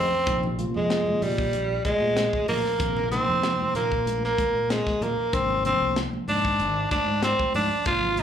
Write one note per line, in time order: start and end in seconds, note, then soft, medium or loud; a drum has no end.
0.00 0.48 C4 medium
0.13 muted fingered electric bass stroke soft
0.27 0.66 A#1 medium
0.27 0.48 C3 medium
0.27 0.48 F3 medium
0.27 0.48 A#3 medium
0.27 0.48 D#4 medium
0.27 kick medium
0.27 closed hi-hat medium
0.43 low conga medium
0.59 1.42 C3 medium
0.59 1.42 F3 medium
0.59 1.42 A#3 medium
0.59 1.41 F4 medium
0.59 closed hi-hat medium
0.59 high conga medium
0.76 1.01 F2 medium
0.76 1.24 G#3 medium
0.90 snare medium
0.90 closed hi-hat medium
1.07 muted fingered electric bass stroke soft
1.07 high conga medium
1.22 1.55 A#2 medium
1.22 1.84 G3 medium
1.22 open hi-hat medium
1.22 low conga medium
1.38 kick medium
1.53 1.79 A#1 medium
1.53 closed hi-hat medium
1.85 2.44 G#3 medium
1.85 kick medium
1.85 closed hi-hat soft
1.85 high conga medium
2.02 2.27 A#2 medium
2.17 snare medium
2.17 closed hi-hat medium
2.33 kick medium
2.33 high conga medium
2.48 2.62 A#2 medium
2.48 3.08 A#3 medium
2.48 open hi-hat medium
2.48 low conga medium
2.65 muted fingered electric bass stroke soft
2.65 snare soft
2.79 3.19 A#1 medium
2.79 3.01 C3 medium
2.79 3.01 F3 medium
2.79 3.01 A#3 medium
2.79 3.01 C4 medium
2.79 kick medium
2.79 closed hi-hat medium
2.97 low conga medium
3.11 3.94 C3 medium
3.11 3.95 F3 medium
3.11 3.94 A#3 medium
3.11 3.71 C4 medium
3.11 3.95 D#4 medium
3.11 snare soft
3.11 closed hi-hat medium
3.11 high conga medium
3.28 3.54 F2 medium
3.43 snare medium
3.43 closed hi-hat medium
3.60 muted fingered electric bass stroke soft
3.60 high conga medium
3.75 4.08 A#2 medium
3.75 4.20 A#3 medium
3.75 closed hi-hat medium
3.75 low conga medium
3.92 kick medium
4.06 4.32 A#1 medium
4.06 closed hi-hat medium
4.06 high conga medium
4.24 4.72 A#3 medium
4.24 snare soft
4.38 kick medium
4.38 closed hi-hat soft
4.38 high conga medium
4.54 4.80 A#2 medium
4.70 5.04 G#3 medium
4.70 snare medium
4.70 closed hi-hat medium
4.87 kick medium
4.87 snare soft
4.87 high conga soft
5.01 5.15 A#2 medium
5.01 5.35 A#3 medium
5.01 closed hi-hat soft
5.01 low conga medium
5.18 muted fingered electric bass stroke soft
5.33 5.72 G#1 medium
5.33 5.54 C3 medium
5.33 5.54 F3 medium
5.33 5.54 A#3 soft
5.33 5.65 C4 medium
5.33 5.54 D4 medium
5.33 kick medium
5.33 closed hi-hat medium
5.50 low conga medium
5.65 6.47 C3 medium
5.65 6.47 F3 medium
5.65 6.47 A#3 medium
5.65 5.99 C4 medium
5.65 6.47 D4 medium
5.65 closed hi-hat medium
5.65 high conga soft
5.81 6.07 C2 medium
5.96 snare medium
5.96 closed hi-hat medium
6.13 muted fingered electric bass stroke soft
6.13 high conga medium
6.28 6.61 G#2 medium
6.28 6.88 D4 medium
6.28 open hi-hat medium
6.28 low conga medium
6.45 kick medium
6.60 6.85 G#1 medium
6.60 closed hi-hat medium
6.91 7.21 D4 medium
6.91 kick medium
6.91 closed hi-hat soft
6.91 high conga medium
7.08 7.33 G#2 medium
7.23 7.53 C4 medium
7.23 snare loud
7.23 closed hi-hat medium
7.39 kick medium
7.39 high conga medium
7.54 7.68 G#2 medium
7.54 7.84 D4 medium
7.54 open hi-hat medium
7.54 low conga medium
7.71 muted fingered electric bass stroke soft
7.85 8.23 G#1 medium
7.85 8.07 C3 medium
7.85 8.07 F3 medium
7.85 8.07 A#3 soft
7.85 8.07 F4 medium
7.85 8.21 F4 medium
7.85 kick loud
7.85 closed hi-hat medium
8.03 low conga medium
8.17 8.23 C3 medium
8.17 8.23 F3 medium
8.17 8.23 A#3 medium
8.17 8.23 D#4 medium
8.17 8.23 F4 medium
8.17 closed hi-hat medium
8.17 high conga medium